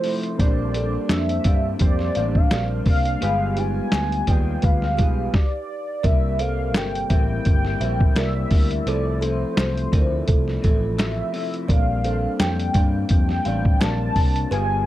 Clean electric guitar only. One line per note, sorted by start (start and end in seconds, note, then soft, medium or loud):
0.04 0.39 C3 medium
0.04 0.40 F3 medium
0.04 0.40 A3 medium
0.04 0.41 E4 medium
0.39 0.73 A#2 medium
0.39 0.74 G3 loud
0.39 0.75 C4 medium
0.39 0.76 D4 loud
0.74 1.43 A#2 medium
0.74 1.45 G3 medium
0.74 1.46 C4 medium
0.74 1.47 D4 medium
1.45 2.16 A#2 medium
1.45 2.16 G3 medium
1.45 2.16 C4 medium
1.45 2.18 D4 medium
2.16 2.50 G3 medium
2.16 2.52 C4 medium
2.16 2.52 D4 medium
2.51 2.84 A#2 medium
2.51 2.85 G3 medium
2.51 2.86 C4 medium
2.51 2.88 D4 medium
2.85 3.21 A#2 medium
2.85 3.20 G3 medium
2.85 3.21 C4 medium
2.85 3.22 D4 medium
3.21 3.56 G3 medium
3.21 3.57 B3 medium
3.21 3.57 F4 medium
3.21 3.58 G#4 loud
3.57 4.26 G3 medium
3.57 4.27 B3 medium
3.57 4.28 F4 medium
4.27 4.97 G3 medium
4.27 4.98 B3 medium
4.27 4.99 F4 medium
4.27 4.99 G#4 medium
4.97 5.33 G3 medium
4.97 5.34 B3 medium
4.97 5.34 F4 medium
4.97 5.35 G#4 medium
6.04 6.38 C3 medium
6.04 6.39 G3 medium
6.04 6.40 A#3 medium
6.04 6.41 E4 medium
6.39 7.09 C3 medium
6.39 7.10 G3 medium
6.39 7.11 A#3 medium
7.10 7.79 C3 medium
7.10 7.81 G3 medium
7.10 7.82 A#3 medium
7.10 7.84 E4 medium
7.81 8.15 C3 medium
7.81 8.16 G3 medium
7.81 8.17 A#3 medium
7.81 8.18 E4 medium
8.16 8.50 C3 medium
8.16 8.51 G3 medium
8.16 8.52 A#3 medium
8.16 8.53 E4 medium
8.51 8.85 C3 medium
8.51 8.87 G3 medium
8.51 8.88 A#3 medium
8.51 8.88 E4 medium
8.87 9.21 C3 medium
8.87 9.22 F3 medium
8.87 9.23 A3 loud
8.87 9.23 E4 medium
9.22 9.91 C3 medium
9.22 9.93 F3 medium
9.22 9.93 A3 medium
9.22 9.94 E4 medium
9.92 10.61 C3 medium
9.92 10.63 F3 medium
9.92 10.63 A3 medium
9.92 10.64 E4 medium
10.62 10.96 C3 medium
10.62 10.97 F3 medium
10.62 10.98 A3 medium
10.62 10.99 E4 medium
10.97 11.31 C3 medium
10.97 11.32 F3 medium
10.97 11.33 A3 medium
10.97 11.34 E4 medium
11.32 11.68 C3 medium
11.32 11.68 F3 medium
11.32 11.69 A3 medium
11.32 11.70 E4 medium
11.68 12.02 A#2 loud
11.68 12.03 G3 medium
11.68 12.04 C4 medium
11.68 12.05 D4 loud
12.03 12.73 A#2 medium
12.03 12.74 G3 medium
12.03 12.75 C4 medium
12.03 12.77 D4 medium
12.74 13.45 A#2 medium
12.74 13.45 G3 medium
12.74 13.46 C4 medium
12.74 13.47 D4 medium
13.46 13.79 G3 medium
13.46 13.80 C4 medium
13.46 13.82 D4 medium
13.79 14.14 A#2 medium
13.79 14.15 G3 medium
13.79 14.16 C4 medium
13.79 14.17 D4 medium
14.15 14.51 A#2 medium
14.15 14.50 G3 medium
14.15 14.51 C4 medium
14.15 14.52 D4 medium
14.51 14.85 G3 medium
14.51 14.86 B3 medium
14.51 14.86 F4 loud
14.51 14.86 G#4 medium